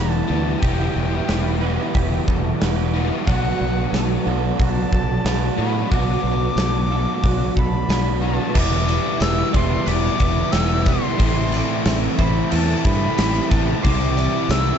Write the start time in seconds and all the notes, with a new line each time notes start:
Already playing: E1 E2 B2 E3 G3 B3 E4 G4 B4 G5 A5 D6
0.28 D2 E2 B2 E3 G3 B3 E4
0.60 E1 E2 B2 E3 G3 B3 G4 G5, kick, open hi-hat
0.64 E4
0.96 E1
1.28 E1 B4, snare, open hi-hat
1.61 E2 B2 E3 G3 B3 G4 B4
1.94 E1 G4, kick, open hi-hat
2.28 E1 A4, kick
2.61 E1 E2 B2 E3 G3 B3 G4 B4, snare, open hi-hat
2.93 E2 B2 E3 G3 B3 E4
3.24 B2 F#3 B3 D4 F#4 F#5 A5, kick, open hi-hat
3.28 B1 B3 D4 F#4
3.61 B1
3.93 B1 A4, snare, open hi-hat, tambourine
4.26 B1 B2 F#3 B3 D4 F#4 A4
4.59 B1 F#4 A5, kick, open hi-hat
4.93 B1 A4, kick
5.24 B1 B2 F#3 B3 D4 F#4 B4, snare, open hi-hat, tambourine
5.57 A2 B2 F#3 B3 D4 F#4 B5
5.89 B1 B2 F#3 B3 D4 F#4 D6, kick, open hi-hat
6.24 B1
6.56 B1 A4, snare, open hi-hat, tambourine
6.90 B2 F#3 B3 D4 F#4 A4
7.24 B1 F#4, kick, open hi-hat
7.56 B1 A4 B5, kick
7.88 B1 B2 F#3 B3 D4 F#4 B4, snare, open hi-hat, tambourine
8.21 B2 F#3 B3 D4 F#4
8.26 A5
8.53 E1 E2 B2 E3 G3 B3 E4 D5 G5, kick, crash, tambourine
8.59 D6
8.86 E3 G3 B3 E4 E5, tambourine, crash
9.19 E1 E3 G3 B3 E4 E6, snare, tambourine, crash
9.53 E1 E3 G3 B3 E4 D5 C6, kick, crash
9.85 E1 E2 B2 E3 G3 B3 E4 B4 D6, tambourine, crash
10.20 E1 E3 G3 B3 E4, kick, crash
10.51 E1 E3 G3 B3 E4 G4 E6, snare, tambourine, crash
10.55 G3 B3 E4
10.85 E3 G3 B3 E4 C6, kick, tambourine, crash
11.16 A1 A2 E3 A3 C4 E4 C5 A5, crash
11.20 E3 A3 C4 E4, kick, tambourine
11.52 A3 C4 E4 D5, tambourine, crash
11.85 A1 E3 A3 C4 E4, snare, tambourine, crash
12.18 A1 A3 C4 E4 C5 B5, kick, tambourine, crash
12.50 E2 A2 E3 A3 C4 E4 A4, tambourine, crash
12.54 A5
12.84 G2 A3 C4 E4 B5, kick, crash
13.17 A1 E3 A3 C4 E4 G4, snare, tambourine, crash
13.50 A1 A3 C4 E4 B4 A5, kick, tambourine, crash
13.82 C2 C3 E3 G3 C4 E4 C5 D6, kick, tambourine, crash
13.86 E3 G3 C4 E4
14.17 G3 C4 E4 D5, tambourine, crash
14.49 C2 E3 G3 C4 E6, snare, tambourine, crash
14.54 E4